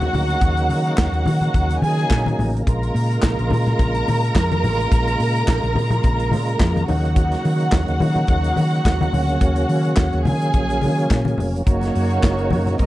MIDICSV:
0, 0, Header, 1, 5, 480
1, 0, Start_track
1, 0, Tempo, 562852
1, 352, Time_signature, 4, 2, 24, 8
1, 10967, End_track
2, 0, Start_track
2, 0, Title_t, "String section"
2, 0, Program_c, 0, 48
2, 0, Note_on_c, 0, 66, 81
2, 0, Note_on_c, 0, 78, 86
2, 1518, Note_off_c, 0, 66, 0
2, 1518, Note_off_c, 0, 78, 0
2, 1558, Note_on_c, 0, 68, 70
2, 1563, Note_on_c, 0, 80, 82
2, 2026, Note_off_c, 0, 68, 0
2, 2028, Note_off_c, 0, 80, 0
2, 2278, Note_on_c, 0, 70, 83
2, 2282, Note_on_c, 0, 82, 84
2, 5840, Note_off_c, 0, 70, 0
2, 5842, Note_off_c, 0, 82, 0
2, 5867, Note_on_c, 0, 78, 86
2, 5869, Note_on_c, 0, 66, 72
2, 8713, Note_off_c, 0, 78, 0
2, 8715, Note_off_c, 0, 66, 0
2, 8744, Note_on_c, 0, 68, 73
2, 8747, Note_on_c, 0, 80, 79
2, 9687, Note_off_c, 0, 68, 0
2, 9688, Note_off_c, 0, 80, 0
2, 9950, Note_on_c, 0, 66, 72
2, 9951, Note_on_c, 0, 73, 78
2, 9952, Note_on_c, 0, 58, 82
2, 10890, Note_off_c, 0, 66, 0
2, 10891, Note_off_c, 0, 58, 0
2, 10891, Note_off_c, 0, 73, 0
2, 10906, Note_on_c, 0, 75, 85
2, 10908, Note_on_c, 0, 60, 74
2, 10913, Note_on_c, 0, 70, 70
2, 10967, Note_off_c, 0, 60, 0
2, 10967, Note_off_c, 0, 70, 0
2, 10967, Note_off_c, 0, 75, 0
2, 10967, End_track
3, 0, Start_track
3, 0, Title_t, "Tonewheel organ"
3, 0, Program_c, 1, 16
3, 0, Note_on_c, 1, 49, 57
3, 0, Note_on_c, 1, 54, 59
3, 0, Note_on_c, 1, 58, 62
3, 0, Note_on_c, 1, 63, 68
3, 2236, Note_off_c, 1, 63, 0
3, 2237, Note_off_c, 1, 54, 0
3, 2273, Note_on_c, 1, 65, 61
3, 2275, Note_on_c, 1, 56, 59
3, 5837, Note_off_c, 1, 65, 0
3, 5838, Note_off_c, 1, 56, 0
3, 5867, Note_on_c, 1, 54, 62
3, 5875, Note_on_c, 1, 63, 72
3, 7773, Note_off_c, 1, 63, 0
3, 7782, Note_on_c, 1, 61, 75
3, 9913, Note_off_c, 1, 54, 0
3, 9916, Note_off_c, 1, 49, 0
3, 9916, Note_off_c, 1, 58, 0
3, 9923, Note_off_c, 1, 61, 0
3, 9945, Note_on_c, 1, 58, 52
3, 9946, Note_on_c, 1, 49, 61
3, 9946, Note_on_c, 1, 54, 57
3, 9946, Note_on_c, 1, 63, 72
3, 10898, Note_off_c, 1, 49, 0
3, 10898, Note_off_c, 1, 54, 0
3, 10898, Note_off_c, 1, 63, 0
3, 10914, Note_on_c, 1, 66, 73
3, 10915, Note_on_c, 1, 56, 58
3, 10916, Note_on_c, 1, 48, 68
3, 10967, Note_off_c, 1, 48, 0
3, 10967, Note_off_c, 1, 56, 0
3, 10967, Note_off_c, 1, 58, 0
3, 10967, Note_off_c, 1, 66, 0
3, 10967, End_track
4, 0, Start_track
4, 0, Title_t, "Fingered electric bass"
4, 0, Program_c, 2, 33
4, 112, Note_on_c, 2, 38, 83
4, 301, Note_off_c, 2, 38, 0
4, 352, Note_on_c, 2, 39, 106
4, 592, Note_on_c, 2, 51, 81
4, 605, Note_off_c, 2, 39, 0
4, 781, Note_off_c, 2, 51, 0
4, 837, Note_on_c, 2, 39, 90
4, 941, Note_off_c, 2, 39, 0
4, 955, Note_on_c, 2, 39, 101
4, 1043, Note_off_c, 2, 39, 0
4, 1069, Note_on_c, 2, 51, 91
4, 1260, Note_off_c, 2, 51, 0
4, 1318, Note_on_c, 2, 39, 90
4, 1505, Note_off_c, 2, 39, 0
4, 1549, Note_on_c, 2, 51, 96
4, 1739, Note_off_c, 2, 51, 0
4, 1793, Note_on_c, 2, 46, 87
4, 1982, Note_off_c, 2, 46, 0
4, 2039, Note_on_c, 2, 33, 78
4, 2226, Note_off_c, 2, 33, 0
4, 2275, Note_on_c, 2, 34, 94
4, 2463, Note_off_c, 2, 34, 0
4, 2513, Note_on_c, 2, 46, 91
4, 2702, Note_off_c, 2, 46, 0
4, 2753, Note_on_c, 2, 34, 96
4, 2859, Note_off_c, 2, 34, 0
4, 2892, Note_on_c, 2, 34, 79
4, 2973, Note_off_c, 2, 34, 0
4, 2998, Note_on_c, 2, 46, 93
4, 3185, Note_off_c, 2, 46, 0
4, 3234, Note_on_c, 2, 34, 108
4, 3422, Note_off_c, 2, 34, 0
4, 3479, Note_on_c, 2, 46, 96
4, 3665, Note_off_c, 2, 46, 0
4, 3713, Note_on_c, 2, 41, 84
4, 3950, Note_on_c, 2, 33, 84
4, 3963, Note_off_c, 2, 41, 0
4, 4140, Note_off_c, 2, 33, 0
4, 4197, Note_on_c, 2, 34, 104
4, 4384, Note_off_c, 2, 34, 0
4, 4433, Note_on_c, 2, 46, 81
4, 4621, Note_off_c, 2, 46, 0
4, 4672, Note_on_c, 2, 34, 93
4, 4778, Note_off_c, 2, 34, 0
4, 4807, Note_on_c, 2, 34, 80
4, 4890, Note_off_c, 2, 34, 0
4, 4911, Note_on_c, 2, 46, 99
4, 5100, Note_off_c, 2, 46, 0
4, 5153, Note_on_c, 2, 34, 90
4, 5386, Note_on_c, 2, 46, 101
4, 5399, Note_off_c, 2, 34, 0
4, 5577, Note_off_c, 2, 46, 0
4, 5625, Note_on_c, 2, 41, 90
4, 5817, Note_off_c, 2, 41, 0
4, 5879, Note_on_c, 2, 39, 104
4, 6254, Note_off_c, 2, 39, 0
4, 6354, Note_on_c, 2, 51, 95
4, 6542, Note_off_c, 2, 51, 0
4, 6584, Note_on_c, 2, 39, 96
4, 6692, Note_off_c, 2, 39, 0
4, 6720, Note_on_c, 2, 39, 73
4, 6805, Note_off_c, 2, 39, 0
4, 6831, Note_on_c, 2, 51, 87
4, 7020, Note_off_c, 2, 51, 0
4, 7064, Note_on_c, 2, 39, 106
4, 7255, Note_off_c, 2, 39, 0
4, 7317, Note_on_c, 2, 51, 112
4, 7504, Note_off_c, 2, 51, 0
4, 7548, Note_on_c, 2, 39, 82
4, 7738, Note_off_c, 2, 39, 0
4, 7788, Note_on_c, 2, 38, 89
4, 7978, Note_off_c, 2, 38, 0
4, 8025, Note_on_c, 2, 39, 110
4, 8216, Note_off_c, 2, 39, 0
4, 8264, Note_on_c, 2, 51, 89
4, 8455, Note_off_c, 2, 51, 0
4, 8506, Note_on_c, 2, 39, 96
4, 8613, Note_off_c, 2, 39, 0
4, 8645, Note_on_c, 2, 39, 77
4, 8762, Note_on_c, 2, 51, 98
4, 8775, Note_off_c, 2, 39, 0
4, 8946, Note_off_c, 2, 51, 0
4, 8987, Note_on_c, 2, 34, 94
4, 9241, Note_on_c, 2, 51, 96
4, 9254, Note_off_c, 2, 34, 0
4, 9426, Note_off_c, 2, 51, 0
4, 9467, Note_on_c, 2, 46, 94
4, 9657, Note_off_c, 2, 46, 0
4, 9711, Note_on_c, 2, 29, 84
4, 9900, Note_off_c, 2, 29, 0
4, 9950, Note_on_c, 2, 30, 106
4, 10139, Note_off_c, 2, 30, 0
4, 10198, Note_on_c, 2, 42, 90
4, 10383, Note_off_c, 2, 42, 0
4, 10432, Note_on_c, 2, 30, 104
4, 10672, Note_on_c, 2, 42, 96
4, 10685, Note_off_c, 2, 30, 0
4, 10860, Note_off_c, 2, 42, 0
4, 10906, Note_on_c, 2, 32, 96
4, 10967, Note_off_c, 2, 32, 0
4, 10967, End_track
5, 0, Start_track
5, 0, Title_t, "Drums"
5, 14, Note_on_c, 9, 63, 86
5, 15, Note_on_c, 9, 42, 36
5, 100, Note_off_c, 9, 42, 0
5, 100, Note_off_c, 9, 63, 0
5, 119, Note_on_c, 9, 64, 85
5, 123, Note_on_c, 9, 46, 58
5, 204, Note_off_c, 9, 64, 0
5, 208, Note_off_c, 9, 46, 0
5, 257, Note_on_c, 9, 42, 48
5, 342, Note_off_c, 9, 42, 0
5, 351, Note_on_c, 9, 42, 62
5, 353, Note_on_c, 9, 36, 106
5, 436, Note_off_c, 9, 42, 0
5, 439, Note_off_c, 9, 36, 0
5, 487, Note_on_c, 9, 42, 50
5, 493, Note_on_c, 9, 62, 33
5, 572, Note_off_c, 9, 42, 0
5, 578, Note_off_c, 9, 62, 0
5, 597, Note_on_c, 9, 46, 62
5, 682, Note_off_c, 9, 46, 0
5, 734, Note_on_c, 9, 42, 43
5, 819, Note_off_c, 9, 42, 0
5, 830, Note_on_c, 9, 42, 63
5, 833, Note_on_c, 9, 39, 92
5, 834, Note_on_c, 9, 62, 33
5, 837, Note_on_c, 9, 36, 113
5, 837, Note_on_c, 9, 38, 118
5, 916, Note_off_c, 9, 42, 0
5, 919, Note_off_c, 9, 39, 0
5, 919, Note_off_c, 9, 62, 0
5, 922, Note_off_c, 9, 36, 0
5, 922, Note_off_c, 9, 38, 0
5, 968, Note_on_c, 9, 42, 36
5, 969, Note_on_c, 9, 62, 32
5, 1053, Note_off_c, 9, 42, 0
5, 1054, Note_off_c, 9, 62, 0
5, 1072, Note_on_c, 9, 63, 78
5, 1072, Note_on_c, 9, 64, 74
5, 1087, Note_on_c, 9, 46, 69
5, 1157, Note_off_c, 9, 63, 0
5, 1157, Note_off_c, 9, 64, 0
5, 1172, Note_off_c, 9, 46, 0
5, 1202, Note_on_c, 9, 64, 68
5, 1214, Note_on_c, 9, 42, 46
5, 1288, Note_off_c, 9, 64, 0
5, 1299, Note_off_c, 9, 42, 0
5, 1315, Note_on_c, 9, 36, 97
5, 1316, Note_on_c, 9, 42, 43
5, 1401, Note_off_c, 9, 36, 0
5, 1401, Note_off_c, 9, 42, 0
5, 1448, Note_on_c, 9, 62, 31
5, 1455, Note_on_c, 9, 42, 52
5, 1533, Note_off_c, 9, 62, 0
5, 1540, Note_off_c, 9, 42, 0
5, 1555, Note_on_c, 9, 63, 74
5, 1566, Note_on_c, 9, 46, 61
5, 1640, Note_off_c, 9, 63, 0
5, 1651, Note_off_c, 9, 46, 0
5, 1697, Note_on_c, 9, 42, 39
5, 1782, Note_off_c, 9, 42, 0
5, 1794, Note_on_c, 9, 36, 95
5, 1795, Note_on_c, 9, 42, 52
5, 1797, Note_on_c, 9, 39, 84
5, 1800, Note_on_c, 9, 38, 95
5, 1879, Note_off_c, 9, 36, 0
5, 1880, Note_off_c, 9, 42, 0
5, 1882, Note_off_c, 9, 39, 0
5, 1885, Note_off_c, 9, 38, 0
5, 1929, Note_on_c, 9, 62, 42
5, 1929, Note_on_c, 9, 63, 90
5, 1945, Note_on_c, 9, 42, 42
5, 2014, Note_off_c, 9, 62, 0
5, 2014, Note_off_c, 9, 63, 0
5, 2030, Note_off_c, 9, 42, 0
5, 2038, Note_on_c, 9, 64, 83
5, 2048, Note_on_c, 9, 46, 57
5, 2124, Note_off_c, 9, 64, 0
5, 2133, Note_off_c, 9, 46, 0
5, 2190, Note_on_c, 9, 42, 47
5, 2275, Note_off_c, 9, 42, 0
5, 2277, Note_on_c, 9, 36, 100
5, 2280, Note_on_c, 9, 42, 62
5, 2362, Note_off_c, 9, 36, 0
5, 2365, Note_off_c, 9, 42, 0
5, 2415, Note_on_c, 9, 42, 51
5, 2501, Note_off_c, 9, 42, 0
5, 2523, Note_on_c, 9, 46, 65
5, 2608, Note_off_c, 9, 46, 0
5, 2658, Note_on_c, 9, 42, 50
5, 2743, Note_off_c, 9, 42, 0
5, 2747, Note_on_c, 9, 42, 64
5, 2750, Note_on_c, 9, 39, 86
5, 2754, Note_on_c, 9, 38, 110
5, 2754, Note_on_c, 9, 62, 33
5, 2755, Note_on_c, 9, 36, 102
5, 2832, Note_off_c, 9, 42, 0
5, 2835, Note_off_c, 9, 39, 0
5, 2839, Note_off_c, 9, 38, 0
5, 2839, Note_off_c, 9, 62, 0
5, 2840, Note_off_c, 9, 36, 0
5, 2889, Note_on_c, 9, 62, 31
5, 2892, Note_on_c, 9, 42, 41
5, 2974, Note_off_c, 9, 62, 0
5, 2977, Note_off_c, 9, 42, 0
5, 2990, Note_on_c, 9, 63, 80
5, 2990, Note_on_c, 9, 64, 85
5, 3012, Note_on_c, 9, 46, 60
5, 3075, Note_off_c, 9, 63, 0
5, 3075, Note_off_c, 9, 64, 0
5, 3097, Note_off_c, 9, 46, 0
5, 3128, Note_on_c, 9, 64, 68
5, 3132, Note_on_c, 9, 42, 44
5, 3213, Note_off_c, 9, 64, 0
5, 3217, Note_off_c, 9, 42, 0
5, 3234, Note_on_c, 9, 36, 104
5, 3235, Note_on_c, 9, 42, 46
5, 3320, Note_off_c, 9, 36, 0
5, 3320, Note_off_c, 9, 42, 0
5, 3367, Note_on_c, 9, 42, 50
5, 3371, Note_on_c, 9, 62, 36
5, 3452, Note_off_c, 9, 42, 0
5, 3457, Note_off_c, 9, 62, 0
5, 3480, Note_on_c, 9, 46, 63
5, 3483, Note_on_c, 9, 63, 76
5, 3565, Note_off_c, 9, 46, 0
5, 3568, Note_off_c, 9, 63, 0
5, 3615, Note_on_c, 9, 42, 43
5, 3700, Note_off_c, 9, 42, 0
5, 3711, Note_on_c, 9, 36, 97
5, 3713, Note_on_c, 9, 42, 61
5, 3715, Note_on_c, 9, 39, 74
5, 3718, Note_on_c, 9, 38, 104
5, 3722, Note_on_c, 9, 62, 34
5, 3796, Note_off_c, 9, 36, 0
5, 3798, Note_off_c, 9, 42, 0
5, 3800, Note_off_c, 9, 39, 0
5, 3803, Note_off_c, 9, 38, 0
5, 3807, Note_off_c, 9, 62, 0
5, 3851, Note_on_c, 9, 62, 39
5, 3851, Note_on_c, 9, 63, 84
5, 3852, Note_on_c, 9, 42, 37
5, 3937, Note_off_c, 9, 42, 0
5, 3937, Note_off_c, 9, 62, 0
5, 3937, Note_off_c, 9, 63, 0
5, 3957, Note_on_c, 9, 64, 82
5, 3959, Note_on_c, 9, 46, 57
5, 4042, Note_off_c, 9, 64, 0
5, 4044, Note_off_c, 9, 46, 0
5, 4096, Note_on_c, 9, 42, 42
5, 4182, Note_off_c, 9, 42, 0
5, 4193, Note_on_c, 9, 36, 115
5, 4195, Note_on_c, 9, 42, 64
5, 4278, Note_off_c, 9, 36, 0
5, 4280, Note_off_c, 9, 42, 0
5, 4329, Note_on_c, 9, 42, 50
5, 4329, Note_on_c, 9, 62, 34
5, 4414, Note_off_c, 9, 42, 0
5, 4415, Note_off_c, 9, 62, 0
5, 4433, Note_on_c, 9, 46, 61
5, 4518, Note_off_c, 9, 46, 0
5, 4567, Note_on_c, 9, 42, 42
5, 4652, Note_off_c, 9, 42, 0
5, 4668, Note_on_c, 9, 42, 60
5, 4671, Note_on_c, 9, 39, 89
5, 4672, Note_on_c, 9, 36, 113
5, 4675, Note_on_c, 9, 38, 102
5, 4753, Note_off_c, 9, 42, 0
5, 4756, Note_off_c, 9, 39, 0
5, 4757, Note_off_c, 9, 36, 0
5, 4760, Note_off_c, 9, 38, 0
5, 4807, Note_on_c, 9, 62, 31
5, 4809, Note_on_c, 9, 42, 36
5, 4893, Note_off_c, 9, 62, 0
5, 4895, Note_off_c, 9, 42, 0
5, 4907, Note_on_c, 9, 63, 80
5, 4907, Note_on_c, 9, 64, 73
5, 4933, Note_on_c, 9, 46, 60
5, 4992, Note_off_c, 9, 63, 0
5, 4992, Note_off_c, 9, 64, 0
5, 5018, Note_off_c, 9, 46, 0
5, 5035, Note_on_c, 9, 64, 78
5, 5046, Note_on_c, 9, 42, 41
5, 5120, Note_off_c, 9, 64, 0
5, 5131, Note_off_c, 9, 42, 0
5, 5144, Note_on_c, 9, 62, 33
5, 5151, Note_on_c, 9, 36, 101
5, 5153, Note_on_c, 9, 42, 49
5, 5230, Note_off_c, 9, 62, 0
5, 5236, Note_off_c, 9, 36, 0
5, 5238, Note_off_c, 9, 42, 0
5, 5285, Note_on_c, 9, 42, 52
5, 5286, Note_on_c, 9, 62, 32
5, 5370, Note_off_c, 9, 42, 0
5, 5371, Note_off_c, 9, 62, 0
5, 5386, Note_on_c, 9, 63, 77
5, 5398, Note_on_c, 9, 46, 68
5, 5471, Note_off_c, 9, 63, 0
5, 5483, Note_off_c, 9, 46, 0
5, 5529, Note_on_c, 9, 42, 41
5, 5614, Note_off_c, 9, 42, 0
5, 5627, Note_on_c, 9, 36, 98
5, 5628, Note_on_c, 9, 42, 58
5, 5629, Note_on_c, 9, 39, 76
5, 5633, Note_on_c, 9, 38, 85
5, 5635, Note_on_c, 9, 62, 31
5, 5712, Note_off_c, 9, 36, 0
5, 5713, Note_off_c, 9, 42, 0
5, 5714, Note_off_c, 9, 39, 0
5, 5718, Note_off_c, 9, 38, 0
5, 5720, Note_off_c, 9, 62, 0
5, 5765, Note_on_c, 9, 63, 84
5, 5774, Note_on_c, 9, 42, 36
5, 5850, Note_off_c, 9, 63, 0
5, 5860, Note_off_c, 9, 42, 0
5, 5869, Note_on_c, 9, 46, 59
5, 5874, Note_on_c, 9, 64, 80
5, 5955, Note_off_c, 9, 46, 0
5, 5959, Note_off_c, 9, 64, 0
5, 6014, Note_on_c, 9, 42, 44
5, 6099, Note_off_c, 9, 42, 0
5, 6108, Note_on_c, 9, 36, 117
5, 6108, Note_on_c, 9, 42, 61
5, 6193, Note_off_c, 9, 36, 0
5, 6193, Note_off_c, 9, 42, 0
5, 6240, Note_on_c, 9, 42, 51
5, 6242, Note_on_c, 9, 62, 33
5, 6251, Note_on_c, 9, 38, 32
5, 6325, Note_off_c, 9, 42, 0
5, 6327, Note_off_c, 9, 62, 0
5, 6337, Note_off_c, 9, 38, 0
5, 6351, Note_on_c, 9, 46, 60
5, 6437, Note_off_c, 9, 46, 0
5, 6481, Note_on_c, 9, 42, 45
5, 6566, Note_off_c, 9, 42, 0
5, 6580, Note_on_c, 9, 42, 64
5, 6583, Note_on_c, 9, 39, 82
5, 6583, Note_on_c, 9, 62, 32
5, 6586, Note_on_c, 9, 36, 117
5, 6587, Note_on_c, 9, 38, 119
5, 6665, Note_off_c, 9, 42, 0
5, 6668, Note_off_c, 9, 39, 0
5, 6668, Note_off_c, 9, 62, 0
5, 6672, Note_off_c, 9, 36, 0
5, 6672, Note_off_c, 9, 38, 0
5, 6722, Note_on_c, 9, 42, 38
5, 6723, Note_on_c, 9, 62, 35
5, 6807, Note_off_c, 9, 42, 0
5, 6808, Note_off_c, 9, 62, 0
5, 6825, Note_on_c, 9, 63, 75
5, 6825, Note_on_c, 9, 64, 80
5, 6836, Note_on_c, 9, 46, 62
5, 6910, Note_off_c, 9, 63, 0
5, 6910, Note_off_c, 9, 64, 0
5, 6922, Note_off_c, 9, 46, 0
5, 6954, Note_on_c, 9, 64, 74
5, 6959, Note_on_c, 9, 42, 44
5, 7040, Note_off_c, 9, 64, 0
5, 7044, Note_off_c, 9, 42, 0
5, 7056, Note_on_c, 9, 42, 52
5, 7061, Note_on_c, 9, 62, 33
5, 7064, Note_on_c, 9, 36, 105
5, 7141, Note_off_c, 9, 42, 0
5, 7147, Note_off_c, 9, 62, 0
5, 7149, Note_off_c, 9, 36, 0
5, 7199, Note_on_c, 9, 62, 29
5, 7200, Note_on_c, 9, 42, 48
5, 7284, Note_off_c, 9, 62, 0
5, 7286, Note_off_c, 9, 42, 0
5, 7300, Note_on_c, 9, 63, 78
5, 7309, Note_on_c, 9, 46, 60
5, 7386, Note_off_c, 9, 63, 0
5, 7395, Note_off_c, 9, 46, 0
5, 7456, Note_on_c, 9, 42, 45
5, 7542, Note_off_c, 9, 42, 0
5, 7548, Note_on_c, 9, 36, 101
5, 7552, Note_on_c, 9, 62, 29
5, 7554, Note_on_c, 9, 42, 60
5, 7556, Note_on_c, 9, 39, 83
5, 7560, Note_on_c, 9, 38, 102
5, 7633, Note_off_c, 9, 36, 0
5, 7637, Note_off_c, 9, 62, 0
5, 7640, Note_off_c, 9, 42, 0
5, 7641, Note_off_c, 9, 39, 0
5, 7645, Note_off_c, 9, 38, 0
5, 7684, Note_on_c, 9, 62, 41
5, 7684, Note_on_c, 9, 63, 87
5, 7697, Note_on_c, 9, 42, 41
5, 7770, Note_off_c, 9, 62, 0
5, 7770, Note_off_c, 9, 63, 0
5, 7782, Note_off_c, 9, 42, 0
5, 7785, Note_on_c, 9, 64, 84
5, 7794, Note_on_c, 9, 46, 63
5, 7870, Note_off_c, 9, 64, 0
5, 7880, Note_off_c, 9, 46, 0
5, 7927, Note_on_c, 9, 42, 40
5, 8012, Note_off_c, 9, 42, 0
5, 8025, Note_on_c, 9, 42, 65
5, 8026, Note_on_c, 9, 36, 109
5, 8110, Note_off_c, 9, 42, 0
5, 8111, Note_off_c, 9, 36, 0
5, 8152, Note_on_c, 9, 42, 56
5, 8159, Note_on_c, 9, 62, 32
5, 8237, Note_off_c, 9, 42, 0
5, 8244, Note_off_c, 9, 62, 0
5, 8266, Note_on_c, 9, 46, 59
5, 8352, Note_off_c, 9, 46, 0
5, 8398, Note_on_c, 9, 42, 45
5, 8483, Note_off_c, 9, 42, 0
5, 8494, Note_on_c, 9, 42, 68
5, 8497, Note_on_c, 9, 39, 92
5, 8500, Note_on_c, 9, 38, 121
5, 8502, Note_on_c, 9, 62, 32
5, 8504, Note_on_c, 9, 36, 107
5, 8579, Note_off_c, 9, 42, 0
5, 8582, Note_off_c, 9, 39, 0
5, 8586, Note_off_c, 9, 38, 0
5, 8588, Note_off_c, 9, 62, 0
5, 8589, Note_off_c, 9, 36, 0
5, 8636, Note_on_c, 9, 42, 37
5, 8643, Note_on_c, 9, 62, 30
5, 8721, Note_off_c, 9, 42, 0
5, 8728, Note_off_c, 9, 62, 0
5, 8744, Note_on_c, 9, 63, 78
5, 8744, Note_on_c, 9, 64, 82
5, 8756, Note_on_c, 9, 46, 68
5, 8829, Note_off_c, 9, 63, 0
5, 8829, Note_off_c, 9, 64, 0
5, 8841, Note_off_c, 9, 46, 0
5, 8883, Note_on_c, 9, 42, 49
5, 8968, Note_off_c, 9, 42, 0
5, 8983, Note_on_c, 9, 42, 48
5, 8987, Note_on_c, 9, 36, 97
5, 9069, Note_off_c, 9, 42, 0
5, 9073, Note_off_c, 9, 36, 0
5, 9116, Note_on_c, 9, 62, 34
5, 9126, Note_on_c, 9, 42, 51
5, 9201, Note_off_c, 9, 62, 0
5, 9211, Note_off_c, 9, 42, 0
5, 9222, Note_on_c, 9, 63, 76
5, 9233, Note_on_c, 9, 46, 69
5, 9308, Note_off_c, 9, 63, 0
5, 9318, Note_off_c, 9, 46, 0
5, 9374, Note_on_c, 9, 42, 45
5, 9459, Note_off_c, 9, 42, 0
5, 9468, Note_on_c, 9, 62, 29
5, 9469, Note_on_c, 9, 36, 101
5, 9473, Note_on_c, 9, 42, 62
5, 9474, Note_on_c, 9, 39, 73
5, 9478, Note_on_c, 9, 38, 96
5, 9553, Note_off_c, 9, 62, 0
5, 9554, Note_off_c, 9, 36, 0
5, 9558, Note_off_c, 9, 42, 0
5, 9559, Note_off_c, 9, 39, 0
5, 9563, Note_off_c, 9, 38, 0
5, 9594, Note_on_c, 9, 62, 40
5, 9594, Note_on_c, 9, 63, 84
5, 9617, Note_on_c, 9, 42, 38
5, 9679, Note_off_c, 9, 62, 0
5, 9679, Note_off_c, 9, 63, 0
5, 9702, Note_off_c, 9, 42, 0
5, 9703, Note_on_c, 9, 64, 89
5, 9723, Note_on_c, 9, 46, 64
5, 9788, Note_off_c, 9, 64, 0
5, 9809, Note_off_c, 9, 46, 0
5, 9860, Note_on_c, 9, 42, 43
5, 9946, Note_off_c, 9, 42, 0
5, 9950, Note_on_c, 9, 36, 109
5, 9952, Note_on_c, 9, 42, 60
5, 10035, Note_off_c, 9, 36, 0
5, 10037, Note_off_c, 9, 42, 0
5, 10075, Note_on_c, 9, 62, 35
5, 10086, Note_on_c, 9, 42, 51
5, 10097, Note_on_c, 9, 38, 35
5, 10160, Note_off_c, 9, 62, 0
5, 10171, Note_off_c, 9, 42, 0
5, 10183, Note_off_c, 9, 38, 0
5, 10194, Note_on_c, 9, 46, 60
5, 10279, Note_off_c, 9, 46, 0
5, 10323, Note_on_c, 9, 42, 44
5, 10408, Note_off_c, 9, 42, 0
5, 10422, Note_on_c, 9, 62, 37
5, 10430, Note_on_c, 9, 42, 58
5, 10431, Note_on_c, 9, 36, 114
5, 10433, Note_on_c, 9, 39, 94
5, 10437, Note_on_c, 9, 38, 111
5, 10507, Note_off_c, 9, 62, 0
5, 10516, Note_off_c, 9, 36, 0
5, 10516, Note_off_c, 9, 42, 0
5, 10519, Note_off_c, 9, 39, 0
5, 10522, Note_off_c, 9, 38, 0
5, 10563, Note_on_c, 9, 42, 39
5, 10649, Note_off_c, 9, 42, 0
5, 10664, Note_on_c, 9, 63, 81
5, 10664, Note_on_c, 9, 64, 89
5, 10683, Note_on_c, 9, 46, 60
5, 10749, Note_off_c, 9, 63, 0
5, 10749, Note_off_c, 9, 64, 0
5, 10768, Note_off_c, 9, 46, 0
5, 10797, Note_on_c, 9, 64, 71
5, 10807, Note_on_c, 9, 42, 48
5, 10882, Note_off_c, 9, 64, 0
5, 10893, Note_off_c, 9, 42, 0
5, 10901, Note_on_c, 9, 62, 32
5, 10907, Note_on_c, 9, 42, 45
5, 10909, Note_on_c, 9, 36, 94
5, 10967, Note_off_c, 9, 36, 0
5, 10967, Note_off_c, 9, 42, 0
5, 10967, Note_off_c, 9, 62, 0
5, 10967, End_track
0, 0, End_of_file